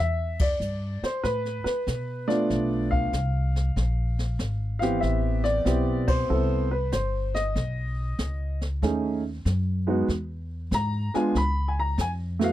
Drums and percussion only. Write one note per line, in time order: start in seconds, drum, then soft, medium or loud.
0.39 kick medium
0.39 ride medium
0.61 hi-hat pedal medium
1.03 snare soft
1.24 brush sweep soft
1.24 kick soft
1.24 snare soft
1.45 snare soft
1.66 snare soft
1.87 kick soft
1.87 snare soft
1.87 hi-hat pedal soft
2.30 snare soft
2.50 brush sweep soft
2.50 kick soft
2.50 snare soft
2.92 kick soft
3.13 kick soft
3.13 snare soft
3.13 hi-hat pedal soft
3.56 snare soft
3.76 brush sweep soft
3.76 kick soft
3.76 snare soft
4.19 snare soft
4.39 kick soft
4.39 snare medium
4.39 hi-hat pedal medium
4.82 snare soft
5.02 brush sweep soft
5.02 kick soft
5.02 snare soft
5.45 snare soft
5.66 kick soft
5.66 snare soft
5.66 hi-hat pedal medium
6.08 kick medium
6.08 ride medium
6.29 brush sweep soft
6.92 kick soft
6.92 snare medium
6.92 hi-hat pedal soft
7.35 snare soft
7.56 brush sweep soft
7.56 kick soft
7.56 snare soft
8.18 kick soft
8.18 snare medium
8.18 hi-hat pedal medium
8.61 snare soft
8.82 brush sweep soft
8.82 kick soft
8.82 snare soft
9.46 kick soft
9.46 snare soft
9.46 hi-hat pedal soft
10.09 brush sweep soft
10.09 kick soft
10.09 snare soft
10.72 kick soft
10.72 snare soft
10.72 hi-hat pedal soft
11.14 snare soft
11.35 brush sweep soft
11.35 kick soft
11.35 snare soft
11.98 kick soft
11.98 snare medium
11.98 hi-hat pedal medium
12.41 snare medium